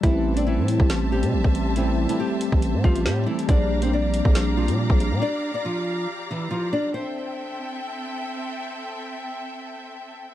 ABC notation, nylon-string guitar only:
X:1
M:4/4
L:1/16
Q:1/4=139
K:Aphr
V:1 name="Nylon-string guitar"
[E,E]3 [Dd] [E,E]4 z2 [G,G]6 | [E,E]3 [E,E] [G,G]4 z2 [F,F]2 [G,G]2 [E,E]2 | [Dd]3 [Cc] [Dd]4 z2 [F,F]6 | [Dd]3 [Dd] [F,F]4 z2 [E,E]2 [F,F]2 [Dd]2 |
c12 z4 | z16 |]